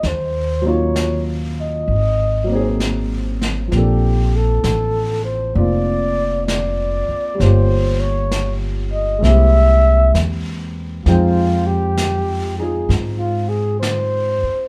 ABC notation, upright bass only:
X:1
M:4/4
L:1/8
Q:"Swing" 1/4=65
K:Fm
V:1 name="Upright bass" clef=bass
E,,4 A,,,4 | B,,,2 =A,,,2 F,,,3 z | G,,,4 C,,2 =E,,2 | F,,4 A,,3 z |]